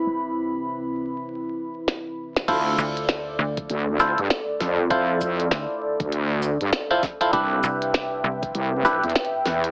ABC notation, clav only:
X:1
M:4/4
L:1/16
Q:"Swing 16ths" 1/4=99
K:Ddor
V:1 name="Clav"
z16 | [EFAc]8- [EFAc]2 [EFAc] z4 z | [EFAc]8- [EFAc]2 z3 [EFAc] z [EFAc] | [DEGB]8- [DEGB]2 [DEGB] z4 z |]